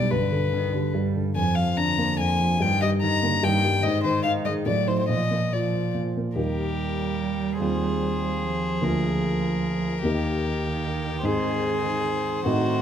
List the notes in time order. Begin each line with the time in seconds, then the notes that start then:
Already playing: B1 B2 G3 D4 D5
0.11 G2 D3 B4
0.32 D3
0.52 D#3 D4
0.72 D3 G3
0.94 G2 G3
1.16 D3
1.36 F2 F3 G#5
1.56 F3 F5
1.77 D3 D4 A#5
1.98 A#3
2.19 F2 F3 G#5
2.40 F3
2.60 G2 D#3 G5
2.81 G3 D#5
3.02 D#3 D#4 A#5
3.23 D3 A#3
3.43 G2 D#3 G5
3.64 G3
3.83 G#2 D#3 D#5
4.04 D#3 C5
4.23 D#4 F5
4.45 G#3 D#5
4.66 A2 F#3 D5
4.87 D#4 C5
4.99 C5
5.09 A#2 F3 D#5
5.31 A#3
5.53 F3 F4 D5
5.73 F3
5.94 A#2
6.17 A#3
6.36 D#2 G3 D#4 G4 A#4
7.60 D#2 C4 F4 G#4 C5
8.43 F3
8.81 D2 A#3 F4 G#4 A#4
10.03 D#2 D#3 A#3 D#4 G4
11.23 G#2 C4 D#4 G#4 C5
12.46 A2 D#3 C4 D#4 F#4